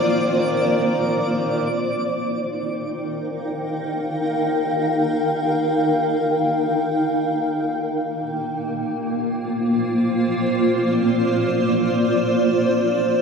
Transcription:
Already playing: harmonium D#3 A#3, ambient pad A#3 F4 C5 D5, synth texture D5 D6
1.61 ambient pad D#4
2.12 ambient pad A#4
2.40 ambient pad G5
2.60 ambient pad F5
7.85 ambient pad A#3
8.52 ambient pad F4
9.13 ambient pad C5
10.11 ambient pad D5

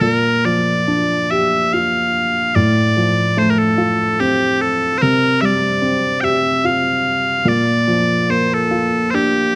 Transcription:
0.01 upright piano A#2, bagpipes A4
0.12 bagpipes A#4
0.45 upright piano F3, bagpipes D5
0.88 upright piano D4
1.30 upright piano G4, bagpipes E5
1.73 upright piano F4, bagpipes F5
2.55 upright piano A2, bagpipes D5
2.97 upright piano F3
3.37 upright piano A3, bagpipes C5
3.50 bagpipes A#4
3.59 bagpipes A4
3.78 upright piano F4
4.20 upright piano C4, bagpipes G4
4.61 bagpipes A4
4.98 bagpipes A#4 C5
5.02 upright piano C3
5.41 upright piano G3, bagpipes E5
5.45 bagpipes D5
5.82 upright piano C4
6.21 upright piano G4, bagpipes E5 G5
6.64 upright piano F4, bagpipes F5
7.45 upright piano A#2, bagpipes D5
7.88 upright piano F3
8.30 upright piano A#3, bagpipes C5
8.54 bagpipes A4
8.71 upright piano F4
9.11 upright piano D4, bagpipes C5
9.15 bagpipes G4

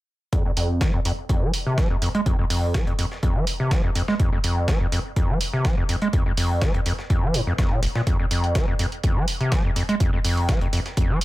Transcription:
0.33 acid bass F2, kick, closed hi-hat
0.45 acid bass F2
0.57 acid bass F2, closed hi-hat, open hi-hat
0.81 acid bass F3, kick, snare, closed hi-hat
0.94 acid bass F2
1.05 acid bass F2, closed hi-hat, open hi-hat
1.29 acid bass F2, kick, closed hi-hat
1.42 acid bass F3
1.54 closed hi-hat, open hi-hat
1.66 acid bass C3
1.78 acid bass F3, kick, snare, closed hi-hat
1.90 acid bass F2
2.02 acid bass F2, closed hi-hat, open hi-hat
2.15 acid bass G#3, closed hi-hat
2.26 acid bass F2, kick, closed hi-hat
2.39 acid bass F2
2.50 acid bass F2, open hi-hat
2.74 acid bass F3, kick, snare, closed hi-hat
2.87 acid bass F2, closed hi-hat
2.99 acid bass F2, closed hi-hat, open hi-hat
3.12 snare
3.23 acid bass F2, kick, closed hi-hat
3.36 acid bass F3
3.47 closed hi-hat, open hi-hat
3.60 acid bass C3
3.71 acid bass F3, kick, snare, closed hi-hat
3.84 acid bass F2
3.95 acid bass F2, closed hi-hat, open hi-hat
4.08 acid bass G#3, snare
4.20 acid bass F2, kick, closed hi-hat
4.33 acid bass F2
4.44 acid bass F2, closed hi-hat, open hi-hat
4.68 acid bass F3, kick, snare, closed hi-hat
4.81 acid bass F2
4.92 acid bass F2, closed hi-hat, open hi-hat
5.16 acid bass F2, kick, closed hi-hat
5.29 acid bass F3
5.41 closed hi-hat, open hi-hat
5.53 acid bass C3
5.65 acid bass F3, kick, snare, closed hi-hat
5.78 acid bass F2
5.89 acid bass F2, closed hi-hat, open hi-hat
6.02 acid bass G#3, closed hi-hat
6.13 acid bass F2, kick, closed hi-hat
6.26 acid bass F2
6.37 acid bass F2, open hi-hat
6.62 acid bass F3, kick, snare, closed hi-hat
6.74 acid bass F2, closed hi-hat
6.86 acid bass F2, closed hi-hat, open hi-hat
6.99 snare
7.10 acid bass F2, kick, closed hi-hat
7.23 acid bass F3
7.34 acid bass G#2, closed hi-hat, open hi-hat
7.47 acid bass F2
7.58 acid bass F2, kick, snare, closed hi-hat
7.71 acid bass A#2
7.83 acid bass F1, closed hi-hat, open hi-hat
7.95 acid bass A#2, snare
8.07 acid bass F2, kick, closed hi-hat
8.19 acid bass F2
8.31 acid bass F2, closed hi-hat, open hi-hat
8.44 closed hi-hat
8.55 acid bass F3, kick, snare, closed hi-hat
8.68 acid bass F2
8.79 acid bass F2, closed hi-hat, open hi-hat
8.92 closed hi-hat
9.03 acid bass F2, kick, closed hi-hat
9.16 acid bass F3
9.28 closed hi-hat, open hi-hat
9.41 acid bass C3, closed hi-hat
9.52 acid bass F3, kick, snare, closed hi-hat
9.65 acid bass F2
9.76 acid bass F2, closed hi-hat, open hi-hat
9.89 acid bass G#3, closed hi-hat
10.00 acid bass F2, kick, closed hi-hat
10.13 acid bass F2
10.24 acid bass F2, open hi-hat
10.37 closed hi-hat
10.49 acid bass F3, kick, snare, closed hi-hat
10.61 acid bass F2, closed hi-hat
10.73 acid bass F2, closed hi-hat, open hi-hat
10.86 snare, closed hi-hat
10.97 acid bass F2, kick, closed hi-hat
11.10 acid bass F3
11.21 closed hi-hat, open hi-hat

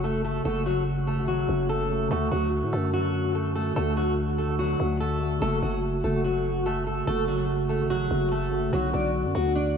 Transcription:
Already playing: 808-style bass F#1, tine electric piano C#3 A3 F#4
0.04 steel-string acoustic guitar A3 A4
0.25 steel-string acoustic guitar A3 A4
0.43 808-style bass F#1, tine electric piano C#3 A3 F#4, steel-string acoustic guitar A3 A4
0.66 steel-string acoustic guitar F#3 F#4
1.07 steel-string acoustic guitar A3 A4
1.16 808-style bass G#1, tine electric piano C#3 A3 F#4
1.28 steel-string acoustic guitar F#3 F#4
1.47 808-style bass F#1, tine electric piano C#3 A3 C#4
1.69 steel-string acoustic guitar A3 A4
1.88 tine electric piano C#3 A3 F#4
2.09 808-style bass D2, tine electric piano D3 A3 F#4, steel-string acoustic guitar A3 A4
2.31 808-style bass D2, steel-string acoustic guitar F#3 F#4
2.62 808-style bass A2
2.73 808-style bass F#2, steel-string acoustic guitar A3 A4
2.81 tine electric piano D3 A3 F#4
2.94 steel-string acoustic guitar F#3 F#4
3.35 steel-string acoustic guitar A3 A4
3.55 steel-string acoustic guitar A3 A4
3.75 808-style bass D2, tine electric piano D3 A3 F#4, steel-string acoustic guitar A3 A4
3.97 steel-string acoustic guitar F#3 F#4
4.38 steel-string acoustic guitar A3 A4
4.47 tine electric piano D3 A3 F#4
4.59 steel-string acoustic guitar F#3 F#4
4.78 808-style bass D2, tine electric piano D3 A3 F#4
5.00 steel-string acoustic guitar A3 A4
5.19 tine electric piano D3 A3 F#4
5.40 808-style bass F#1, tine electric piano C#3 A3 F#4, steel-string acoustic guitar A3 A4
5.62 808-style bass F#1, steel-string acoustic guitar F#3 F#4
6.04 808-style bass F#1, steel-string acoustic guitar A3 A4
6.12 tine electric piano C#3 A3 F#4
6.24 steel-string acoustic guitar F#3 F#4
6.66 steel-string acoustic guitar A3 A4
6.87 steel-string acoustic guitar A3 A4
7.06 808-style bass F#1, tine electric piano C#3 A3 F#4, steel-string acoustic guitar A3 A4
7.28 steel-string acoustic guitar F#3 F#4
7.69 steel-string acoustic guitar A3 A4
7.78 808-style bass G#1, tine electric piano C#3 A3 F#4
7.90 steel-string acoustic guitar F#3 F#4
8.09 808-style bass F#1, tine electric piano C#3 A3 F#4
8.32 steel-string acoustic guitar A3 A4
8.50 tine electric piano C#3 A3 F#4
8.71 808-style bass B1, tine electric piano D3 B3 F#4, steel-string acoustic guitar F#3 F#4
8.94 808-style bass B1, steel-string acoustic guitar D4 D5
9.25 808-style bass F#2
9.35 808-style bass D2, steel-string acoustic guitar F#3 F#4
9.43 tine electric piano D3 B3 D4
9.56 steel-string acoustic guitar D4 D5

